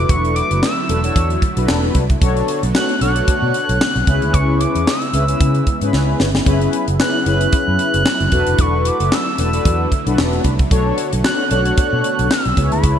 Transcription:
Already playing: D3 F#3 A3 D4 E4 F#4 A4 B4 D6
0.09 E1 C#6, kick, closed hi-hat
0.25 closed hi-hat
0.36 D6, closed hi-hat
0.51 F#1, closed hi-hat
0.62 E6, snare, clap
0.88 E1 D4 F#4 A4 B4, closed hi-hat
1.03 D4 F#4 A4 C#5, closed hi-hat
1.16 E2, kick, closed hi-hat
1.30 closed hi-hat
1.42 kick, closed hi-hat
1.57 B1 D4 F#4 A4 B4, closed hi-hat
1.68 E1, snare, clap
1.95 C2, kick, closed hi-hat
2.10 kick, closed hi-hat
2.21 B1 D3 A3 B3 C#4 F#4 A4 C#5, kick, closed hi-hat
2.28 D4
2.37 closed hi-hat
2.48 closed hi-hat
2.63 B1, closed hi-hat
2.75 D4 F#4 A4 C#5 F#6, snare, clap
2.89 closed hi-hat
3.01 B1 D4 F#4 A4 C#5 F#6, closed hi-hat
3.16 closed hi-hat
3.28 muted fingered electric bass stroke, kick, closed hi-hat
3.42 B2
3.54 closed hi-hat
3.69 B1, closed hi-hat
3.81 snare, clap
3.96 B1, closed hi-hat
4.07 C#2 C#3 G#3 B3 C#4 E4 G#4 B4, kick, closed hi-hat
4.22 D2, closed hi-hat
4.33 C#2 C#6, kick, closed hi-hat
4.60 D6, closed hi-hat
4.75 E2, closed hi-hat
4.87 E6, snare, clap
5.02 closed hi-hat
5.13 C#2 C#4 E4 G#4 B4, closed hi-hat
5.28 C#4 E4 G#4 B4, closed hi-hat
5.40 C#3, kick, closed hi-hat
5.54 closed hi-hat
5.67 kick, closed hi-hat
5.81 G#2 C#4 E4 G#4 B4, closed hi-hat
5.93 C#2, snare
6.20 G1, snare
6.35 snare
6.46 F#1 F#3 C#4 E4 G#4 B4, kick, closed hi-hat
6.61 closed hi-hat
6.73 closed hi-hat
6.88 F#1, closed hi-hat
6.99 C#4 E4 G#4 B4 F#6, snare, clap
7.25 F#1 C#4 E4 G#4 B4 F#6, closed hi-hat
7.41 closed hi-hat
7.52 muted fingered electric bass stroke, kick, closed hi-hat
7.68 F#2
7.79 closed hi-hat
7.94 F#1, closed hi-hat
8.06 snare, clap
8.20 F#1, closed hi-hat
8.32 E1 D3 A3 D4 F#4 A4 B4, kick, closed hi-hat
8.47 F1, closed hi-hat
8.58 E1 C#6, kick, closed hi-hat
8.85 D6, closed hi-hat
9.00 F#1, closed hi-hat
9.12 E6, snare, clap
9.38 E1 D4 F#4 A4 B4, closed hi-hat
9.53 D4 F#4 A4 B4, closed hi-hat
9.65 E2, kick, closed hi-hat
9.92 kick, closed hi-hat
10.06 B1 D4 F#4 A4 B4, closed hi-hat
10.18 E1, snare, clap
10.33 closed hi-hat
10.44 C2, kick, closed hi-hat
10.59 kick, closed hi-hat
10.71 B1 B3 D4 F#4 A4 C#5, kick, closed hi-hat
10.98 closed hi-hat
11.13 B1, closed hi-hat
11.24 D4 F#4 A4 C#5 F#6, snare, clap
11.50 B1 D4 F#4 A4 C#5 F#6, closed hi-hat
11.65 closed hi-hat
11.77 F#6, muted fingered electric bass stroke, kick, closed hi-hat
11.93 B2
12.04 closed hi-hat
12.19 B1, closed hi-hat
12.31 E6, snare, clap
12.45 B1, closed hi-hat
12.56 C#2 C#3 G#3 E4 G#4 B4 C#5, kick, closed hi-hat
12.72 D2 B5, closed hi-hat
12.84 C#2, kick, closed hi-hat

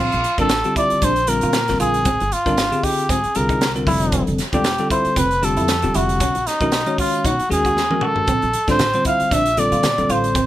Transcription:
Already playing: F4
0.00 A#1 C4
0.12 A#1, closed hi-hat
0.24 closed hi-hat
0.38 A1 D3 G3 C4 D4 F4 A4 A#4, kick, closed hi-hat
0.49 F4 A4, snare, closed hi-hat
0.64 D3 G3 C4 F4 G4, closed hi-hat
0.76 E4 D5, kick, closed hi-hat
0.90 muted upright bass stroke, closed hi-hat
1.02 A#1 D4 C5, kick, closed hi-hat
1.16 closed hi-hat
1.27 D3 G3 C4 F4 A#4, closed hi-hat
1.41 A#2 F4, closed hi-hat
1.53 snare, closed hi-hat
1.68 A1 D3 G3 C4 F4 A#4, snare, closed hi-hat
1.80 A#1 F4 G#4, closed hi-hat
1.94 closed hi-hat
2.05 G#1 C4, kick, closed hi-hat
2.20 G1, closed hi-hat
2.32 F4, closed hi-hat
2.46 G#1 D3 G3 C4 D4 F4 A#4, kick, closed hi-hat
2.58 snare, closed hi-hat
2.72 D3 C4 F4 G4 G#4, closed hi-hat
2.83 D#4 G4, kick, open hi-hat
2.99 closed hi-hat
3.09 G#2 C4 G#4, kick, closed hi-hat
3.24 muted upright bass stroke, closed hi-hat
3.35 C2 D3 G3 C4 F4 G#4 A#4, closed hi-hat
3.49 D#4, kick, closed hi-hat
3.61 snare, closed hi-hat
3.75 D3 G3 C4 F4 A#4, closed hi-hat
3.87 F1 D3 F3 G3 C4 E4 A4, kick, open hi-hat
4.01 closed hi-hat
4.12 C4, kick, closed hi-hat
4.27 F1, closed hi-hat
4.38 snare, closed hi-hat
4.53 E1 D3 G3 C4 D4 F4 G4 A4, kick, closed hi-hat
4.64 snare, closed hi-hat
4.78 D3 G3 C4 F4 A4, closed hi-hat
4.90 E4 C5, kick, closed hi-hat
5.05 muted upright bass stroke, closed hi-hat
5.16 F1 C4 B4, kick, closed hi-hat
5.31 closed hi-hat
5.42 D3 G3 C4 F4 G4 A4, closed hi-hat
5.57 F2 E4, closed hi-hat
5.68 snare, closed hi-hat
5.82 E1 D3 G3 C4 F4 G4, closed hi-hat
5.94 F1 E4 F#4, closed hi-hat
6.09 closed hi-hat
6.20 B1 C#4, kick, closed hi-hat
6.35 A#1, closed hi-hat
6.47 D#4, snare, closed hi-hat
6.60 B1 D#3 G#3 C#4 D#4 F#4 A#4, kick, closed hi-hat
6.72 snare, closed hi-hat
6.86 D#3 G#3 C#4 F#4 C#5, closed hi-hat
6.98 F4, kick, open hi-hat
7.13 closed hi-hat
7.25 B2 D#4 F#4, kick, closed hi-hat
7.39 muted upright bass stroke, closed hi-hat
7.50 D#2 D#3 G#3 C#4 F#4 G#4, closed hi-hat
7.65 F#4, kick, closed hi-hat
7.77 snare
7.90 D#3 G#3 C#4 F#4 A#4, high tom
8.01 F#4 A4, mid tom
8.16 muted upright bass stroke, floor tom
8.27 A#1 C4, kick, closed hi-hat, muted conga
8.42 A#1, closed hi-hat
8.53 closed hi-hat, muted conga
8.68 A1 D3 G3 C4 D4 F4 A4 C5, kick, snare, closed hi-hat
8.79 F4 A4, snare, closed hi-hat, high conga
8.93 D3 G3 C4 F4 C5, closed hi-hat
9.05 E4 F5, kick, closed hi-hat
9.20 muted upright bass stroke, closed hi-hat
9.31 A#1 D4 E5, kick, closed hi-hat, muted conga
9.46 closed hi-hat
9.57 D3 G3 C4 F4 A4 D5, closed hi-hat, high conga
9.72 A#2 F4, closed hi-hat
9.83 snare, closed hi-hat, high conga
9.98 A1 D3 G3 C4 F4 A4, closed hi-hat
10.09 A1 F4 C5, closed hi-hat, muted conga
10.24 closed hi-hat
10.35 G#1 C4, kick, closed hi-hat, muted conga

